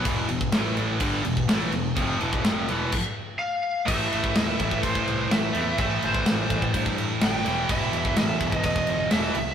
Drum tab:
CC |x-x-x-x-x-x-x-x-|x-x-x-x-x-------|x-x-x-x-x-x-x-x-|x-x-x-x-x-x-x-x-|
SD |----o-------o---|----o-----------|----o-------o---|----o-------o---|
BD |o--o----o--o----|o--o----o-------|o--o--oooo------|o--o--oooo------|

CC |x-x-x-x-x-x-x-x-|
SD |----o-------o---|
BD |o--o--oooo------|